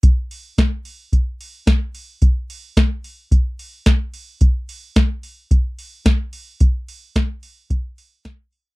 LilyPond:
\new DrumStaff \with { instrumentName = "Drums" } \drummode { \time 4/4 \tempo 4 = 110 <hh bd>8 hho8 <hh bd sn>8 hho8 <hh bd>8 hho8 <hh bd sn>8 hho8 | <hh bd>8 hho8 <hh bd sn>8 hho8 <hh bd>8 hho8 <hh bd sn>8 hho8 | <hh bd>8 hho8 <hh bd sn>8 hho8 <hh bd>8 hho8 <hh bd sn>8 hho8 | <hh bd>8 hho8 <hh bd sn>8 hho8 <hh bd>8 hho8 <hh bd sn>8 hho8 | }